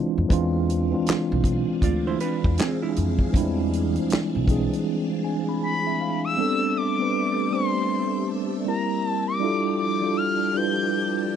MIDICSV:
0, 0, Header, 1, 8, 480
1, 0, Start_track
1, 0, Tempo, 759494
1, 191, Time_signature, 4, 2, 24, 8
1, 7180, End_track
2, 0, Start_track
2, 0, Title_t, "Analog synth lead"
2, 0, Program_c, 0, 81
2, 3560, Note_on_c, 0, 83, 93
2, 3920, Note_off_c, 0, 83, 0
2, 3945, Note_on_c, 0, 88, 114
2, 4279, Note_on_c, 0, 86, 102
2, 4288, Note_off_c, 0, 88, 0
2, 4757, Note_on_c, 0, 84, 95
2, 4767, Note_off_c, 0, 86, 0
2, 5234, Note_off_c, 0, 84, 0
2, 5484, Note_on_c, 0, 82, 84
2, 5744, Note_off_c, 0, 82, 0
2, 5744, Note_on_c, 0, 81, 84
2, 5842, Note_off_c, 0, 81, 0
2, 5858, Note_on_c, 0, 86, 101
2, 6167, Note_off_c, 0, 86, 0
2, 6182, Note_on_c, 0, 86, 96
2, 6427, Note_on_c, 0, 89, 109
2, 6436, Note_off_c, 0, 86, 0
2, 6675, Note_on_c, 0, 91, 115
2, 6685, Note_off_c, 0, 89, 0
2, 7153, Note_off_c, 0, 91, 0
2, 7180, End_track
3, 0, Start_track
3, 0, Title_t, "String machine"
3, 0, Program_c, 1, 50
3, 195, Note_on_c, 1, 62, 76
3, 195, Note_on_c, 1, 68, 62
3, 196, Note_on_c, 1, 60, 67
3, 196, Note_on_c, 1, 77, 85
3, 4008, Note_off_c, 1, 60, 0
3, 4008, Note_off_c, 1, 62, 0
3, 4008, Note_off_c, 1, 68, 0
3, 4008, Note_off_c, 1, 77, 0
3, 4027, Note_on_c, 1, 57, 78
3, 4027, Note_on_c, 1, 76, 67
3, 4028, Note_on_c, 1, 81, 86
3, 4029, Note_on_c, 1, 74, 75
3, 4030, Note_on_c, 1, 67, 65
3, 5455, Note_off_c, 1, 57, 0
3, 5455, Note_off_c, 1, 81, 0
3, 5456, Note_off_c, 1, 67, 0
3, 5456, Note_off_c, 1, 74, 0
3, 5468, Note_on_c, 1, 82, 83
3, 5470, Note_on_c, 1, 67, 83
3, 5930, Note_off_c, 1, 76, 0
3, 5945, Note_off_c, 1, 82, 0
3, 5948, Note_on_c, 1, 53, 80
3, 5948, Note_on_c, 1, 81, 81
3, 5949, Note_on_c, 1, 79, 76
3, 5950, Note_on_c, 1, 74, 73
3, 7180, Note_off_c, 1, 53, 0
3, 7180, Note_off_c, 1, 67, 0
3, 7180, Note_off_c, 1, 74, 0
3, 7180, Note_off_c, 1, 79, 0
3, 7180, Note_off_c, 1, 81, 0
3, 7180, End_track
4, 0, Start_track
4, 0, Title_t, "Hollow-body jazz guitar"
4, 0, Program_c, 2, 26
4, 1161, Note_on_c, 2, 65, 56
4, 1162, Note_on_c, 2, 74, 69
4, 1298, Note_off_c, 2, 74, 0
4, 1299, Note_off_c, 2, 65, 0
4, 1310, Note_on_c, 2, 72, 77
4, 1312, Note_on_c, 2, 64, 67
4, 1392, Note_off_c, 2, 72, 0
4, 1393, Note_off_c, 2, 64, 0
4, 1395, Note_on_c, 2, 71, 85
4, 1399, Note_on_c, 2, 62, 73
4, 1621, Note_off_c, 2, 71, 0
4, 1623, Note_off_c, 2, 62, 0
4, 1638, Note_on_c, 2, 68, 74
4, 1642, Note_on_c, 2, 60, 69
4, 1777, Note_off_c, 2, 68, 0
4, 1779, Note_off_c, 2, 60, 0
4, 1785, Note_on_c, 2, 64, 70
4, 1790, Note_on_c, 2, 56, 59
4, 2478, Note_off_c, 2, 64, 0
4, 2480, Note_off_c, 2, 56, 0
4, 7180, End_track
5, 0, Start_track
5, 0, Title_t, "Tine electric piano"
5, 0, Program_c, 3, 4
5, 0, Control_c, 3, 64, 127
5, 0, Note_on_c, 3, 52, 79
5, 0, Note_on_c, 3, 56, 70
5, 0, Note_on_c, 3, 60, 65
5, 0, Note_on_c, 3, 62, 72
5, 0, Note_on_c, 3, 64, 81
5, 0, Note_on_c, 3, 65, 82
5, 145, Note_off_c, 3, 52, 0
5, 149, Note_off_c, 3, 56, 0
5, 152, Note_off_c, 3, 60, 0
5, 155, Note_off_c, 3, 62, 0
5, 158, Note_off_c, 3, 65, 0
5, 182, Note_on_c, 3, 52, 104
5, 189, Note_on_c, 3, 56, 96
5, 196, Note_on_c, 3, 60, 97
5, 199, Control_c, 3, 64, 0
5, 203, Note_on_c, 3, 62, 89
5, 205, Note_off_c, 3, 64, 0
5, 209, Note_on_c, 3, 65, 118
5, 317, Control_c, 3, 64, 127
5, 471, Note_off_c, 3, 52, 0
5, 474, Note_off_c, 3, 56, 0
5, 477, Note_off_c, 3, 60, 0
5, 481, Note_off_c, 3, 62, 0
5, 484, Note_off_c, 3, 65, 0
5, 571, Note_on_c, 3, 52, 80
5, 576, Note_on_c, 3, 56, 66
5, 583, Note_on_c, 3, 60, 73
5, 590, Note_on_c, 3, 62, 74
5, 596, Note_on_c, 3, 65, 87
5, 1306, Note_off_c, 3, 52, 0
5, 1309, Note_off_c, 3, 56, 0
5, 1312, Note_off_c, 3, 60, 0
5, 1316, Note_off_c, 3, 62, 0
5, 1319, Note_off_c, 3, 65, 0
5, 2103, Note_on_c, 3, 52, 100
5, 2109, Note_on_c, 3, 55, 83
5, 2115, Note_on_c, 3, 60, 104
5, 2123, Note_on_c, 3, 62, 105
5, 2130, Note_on_c, 3, 64, 118
5, 2150, Note_on_c, 3, 56, 100
5, 2161, Note_off_c, 3, 55, 0
5, 2675, Note_off_c, 3, 52, 0
5, 2681, Note_off_c, 3, 60, 0
5, 2685, Note_off_c, 3, 62, 0
5, 2689, Note_off_c, 3, 64, 0
5, 2699, Note_off_c, 3, 56, 0
5, 2824, Note_on_c, 3, 52, 85
5, 2829, Note_on_c, 3, 56, 74
5, 2836, Note_on_c, 3, 60, 79
5, 2843, Note_on_c, 3, 62, 81
5, 2851, Note_on_c, 3, 68, 101
5, 3314, Note_on_c, 3, 80, 66
5, 3452, Note_off_c, 3, 80, 0
5, 3468, Note_on_c, 3, 83, 69
5, 3549, Note_off_c, 3, 83, 0
5, 3557, Note_on_c, 3, 80, 61
5, 3565, Note_off_c, 3, 52, 0
5, 3568, Note_off_c, 3, 56, 0
5, 3572, Note_off_c, 3, 60, 0
5, 3575, Note_off_c, 3, 62, 0
5, 3579, Note_off_c, 3, 68, 0
5, 3693, Note_off_c, 3, 80, 0
5, 3708, Note_on_c, 3, 76, 62
5, 3789, Note_off_c, 3, 76, 0
5, 3799, Note_on_c, 3, 77, 73
5, 4018, Note_off_c, 3, 77, 0
5, 4023, Note_on_c, 3, 55, 85
5, 4029, Note_on_c, 3, 59, 78
5, 4035, Note_on_c, 3, 60, 84
5, 4039, Control_c, 3, 64, 0
5, 4042, Note_on_c, 3, 62, 86
5, 4049, Note_on_c, 3, 69, 96
5, 4144, Control_c, 3, 64, 127
5, 4311, Note_off_c, 3, 55, 0
5, 4314, Note_off_c, 3, 59, 0
5, 4317, Note_off_c, 3, 60, 0
5, 4321, Note_off_c, 3, 62, 0
5, 4324, Note_off_c, 3, 69, 0
5, 4413, Note_on_c, 3, 55, 66
5, 4418, Note_on_c, 3, 59, 62
5, 4425, Note_on_c, 3, 60, 65
5, 4433, Note_on_c, 3, 62, 69
5, 4438, Note_on_c, 3, 71, 82
5, 4684, Note_off_c, 3, 55, 0
5, 4686, Note_off_c, 3, 59, 0
5, 4690, Note_off_c, 3, 60, 0
5, 4693, Note_off_c, 3, 62, 0
5, 4696, Note_off_c, 3, 71, 0
5, 4742, Note_on_c, 3, 55, 73
5, 4748, Note_on_c, 3, 57, 62
5, 4755, Note_on_c, 3, 60, 63
5, 4761, Note_on_c, 3, 62, 62
5, 4768, Note_on_c, 3, 72, 79
5, 5455, Note_off_c, 3, 55, 0
5, 5462, Note_on_c, 3, 55, 71
5, 5467, Note_off_c, 3, 60, 0
5, 5469, Note_off_c, 3, 57, 0
5, 5469, Note_on_c, 3, 58, 60
5, 5475, Note_on_c, 3, 60, 57
5, 5476, Note_off_c, 3, 62, 0
5, 5480, Note_off_c, 3, 72, 0
5, 5480, Control_c, 3, 64, 0
5, 5482, Note_on_c, 3, 64, 70
5, 5489, Note_on_c, 3, 70, 78
5, 5589, Control_c, 3, 64, 127
5, 5874, Note_off_c, 3, 55, 0
5, 5877, Note_off_c, 3, 58, 0
5, 5880, Note_off_c, 3, 60, 0
5, 5884, Note_off_c, 3, 64, 0
5, 5888, Note_off_c, 3, 70, 0
5, 5940, Note_on_c, 3, 55, 90
5, 5947, Note_on_c, 3, 62, 91
5, 5955, Note_on_c, 3, 64, 93
5, 5958, Control_c, 3, 64, 0
5, 5962, Note_on_c, 3, 65, 88
5, 5969, Note_on_c, 3, 69, 97
5, 6076, Control_c, 3, 64, 127
5, 6230, Note_off_c, 3, 55, 0
5, 6233, Note_off_c, 3, 62, 0
5, 6237, Note_off_c, 3, 64, 0
5, 6240, Note_off_c, 3, 65, 0
5, 6244, Note_off_c, 3, 69, 0
5, 6328, Note_on_c, 3, 55, 77
5, 6334, Note_on_c, 3, 62, 60
5, 6341, Note_on_c, 3, 64, 67
5, 6347, Note_on_c, 3, 65, 68
5, 6354, Note_on_c, 3, 69, 72
5, 6601, Note_off_c, 3, 55, 0
5, 6604, Note_off_c, 3, 62, 0
5, 6608, Note_off_c, 3, 64, 0
5, 6610, Note_off_c, 3, 65, 0
5, 6614, Note_off_c, 3, 69, 0
5, 6660, Note_on_c, 3, 55, 77
5, 6667, Note_on_c, 3, 62, 68
5, 6674, Note_on_c, 3, 64, 69
5, 6681, Note_on_c, 3, 65, 68
5, 6686, Note_on_c, 3, 71, 79
5, 7180, Note_off_c, 3, 55, 0
5, 7180, Note_off_c, 3, 62, 0
5, 7180, Note_off_c, 3, 64, 0
5, 7180, Note_off_c, 3, 65, 0
5, 7180, Note_off_c, 3, 71, 0
5, 7180, End_track
6, 0, Start_track
6, 0, Title_t, "Upright bass"
6, 0, Program_c, 4, 32
6, 111, Note_on_c, 4, 41, 83
6, 180, Note_off_c, 4, 41, 0
6, 195, Note_on_c, 4, 40, 95
6, 582, Note_off_c, 4, 40, 0
6, 832, Note_on_c, 4, 35, 90
6, 1022, Note_off_c, 4, 35, 0
6, 1155, Note_on_c, 4, 38, 85
6, 1348, Note_off_c, 4, 38, 0
6, 1550, Note_on_c, 4, 40, 88
6, 1619, Note_off_c, 4, 40, 0
6, 1880, Note_on_c, 4, 41, 81
6, 2071, Note_off_c, 4, 41, 0
6, 2114, Note_on_c, 4, 40, 95
6, 2502, Note_off_c, 4, 40, 0
6, 2749, Note_on_c, 4, 35, 77
6, 2940, Note_off_c, 4, 35, 0
6, 7180, End_track
7, 0, Start_track
7, 0, Title_t, "Muted upright bass strokes"
7, 685, Note_on_c, 9, 29, 42
7, 748, Note_off_c, 9, 29, 0
7, 2602, Note_on_c, 9, 29, 43
7, 2665, Note_off_c, 9, 29, 0
7, 7180, End_track
8, 0, Start_track
8, 0, Title_t, "Drums"
8, 191, Note_on_c, 9, 36, 103
8, 198, Note_on_c, 9, 42, 77
8, 254, Note_off_c, 9, 36, 0
8, 261, Note_off_c, 9, 42, 0
8, 440, Note_on_c, 9, 42, 58
8, 503, Note_off_c, 9, 42, 0
8, 672, Note_on_c, 9, 42, 71
8, 693, Note_on_c, 9, 38, 105
8, 694, Note_on_c, 9, 39, 82
8, 736, Note_off_c, 9, 42, 0
8, 757, Note_off_c, 9, 38, 0
8, 758, Note_off_c, 9, 39, 0
8, 909, Note_on_c, 9, 36, 79
8, 915, Note_on_c, 9, 42, 58
8, 972, Note_off_c, 9, 36, 0
8, 979, Note_off_c, 9, 42, 0
8, 1149, Note_on_c, 9, 36, 84
8, 1154, Note_on_c, 9, 42, 73
8, 1213, Note_off_c, 9, 36, 0
8, 1217, Note_off_c, 9, 42, 0
8, 1392, Note_on_c, 9, 42, 65
8, 1456, Note_off_c, 9, 42, 0
8, 1545, Note_on_c, 9, 36, 83
8, 1608, Note_off_c, 9, 36, 0
8, 1628, Note_on_c, 9, 42, 79
8, 1646, Note_on_c, 9, 38, 104
8, 1647, Note_on_c, 9, 39, 84
8, 1692, Note_off_c, 9, 42, 0
8, 1709, Note_off_c, 9, 38, 0
8, 1710, Note_off_c, 9, 39, 0
8, 1873, Note_on_c, 9, 42, 74
8, 1937, Note_off_c, 9, 42, 0
8, 2014, Note_on_c, 9, 36, 74
8, 2077, Note_off_c, 9, 36, 0
8, 2110, Note_on_c, 9, 36, 113
8, 2120, Note_on_c, 9, 42, 77
8, 2174, Note_off_c, 9, 36, 0
8, 2183, Note_off_c, 9, 42, 0
8, 2360, Note_on_c, 9, 42, 60
8, 2423, Note_off_c, 9, 42, 0
8, 2500, Note_on_c, 9, 42, 42
8, 2563, Note_off_c, 9, 42, 0
8, 2591, Note_on_c, 9, 42, 80
8, 2612, Note_on_c, 9, 38, 105
8, 2613, Note_on_c, 9, 39, 84
8, 2654, Note_off_c, 9, 42, 0
8, 2675, Note_off_c, 9, 38, 0
8, 2676, Note_off_c, 9, 39, 0
8, 2828, Note_on_c, 9, 36, 81
8, 2835, Note_on_c, 9, 42, 54
8, 2892, Note_off_c, 9, 36, 0
8, 2898, Note_off_c, 9, 42, 0
8, 2991, Note_on_c, 9, 42, 51
8, 3055, Note_off_c, 9, 42, 0
8, 7180, End_track
0, 0, End_of_file